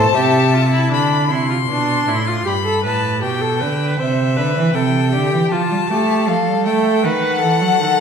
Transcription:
Already playing: viola A4, violin C5 A5
0.14 cello C3, viola G4, violin E5
0.54 viola F4
0.73 viola E4
0.91 cello D3, viola D4, violin B5
1.29 cello C3, viola E4, violin C6
1.50 viola F4
1.68 cello B2, viola D4
2.07 cello A2, viola E4
2.27 viola F4
2.45 cello G2, viola G4, violin B5
2.64 viola A4
2.84 cello A2, viola B4, violin A5
3.22 cello B2, viola G4, violin G5
3.41 viola A4
3.60 cello D3, viola B4
3.98 cello C3, viola C5, violin E5
4.37 cello D3, viola B4
4.56 cello E3
4.74 cello C3, viola A4, violin G5
5.13 cello D3, viola G4
5.32 cello E3
5.51 cello F3, viola F4, violin A5
5.70 cello G3
5.90 cello A3, viola G4
6.28 cello F3, viola A4, violin F5
6.48 cello G3
6.66 cello A3, violin G5
7.04 cello D#3, viola B4, violin F#5
7.42 cello E3, viola A4
7.61 cello F#3
7.79 cello D#3

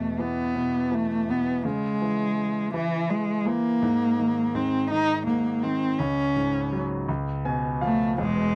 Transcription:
Already playing: grand piano E2 B2, cello A3
0.19 grand piano E3, cello B3
0.55 grand piano B2
0.92 grand piano E3, cello A3
1.29 grand piano B2, cello B3
1.65 grand piano C#3, cello G#3
2.02 grand piano E3
2.74 cello E3, grand piano E3
3.10 cello G#3
3.45 grand piano E3, cello A#3
3.82 grand piano G#2
4.19 grand piano D#3
4.55 grand piano G#2, cello C4
4.90 grand piano D#3, cello D#4
5.27 grand piano G#2, cello A#3
5.63 grand piano D#3, cello C4
5.99 grand piano C#2, cello C#4
6.36 grand piano G#2
6.72 grand piano F#3
7.08 grand piano C#2
7.45 grand piano B2 G#5
7.81 grand piano F3 F5, cello A3
8.18 grand piano E1 E2, cello G#3
8.36 grand piano B2

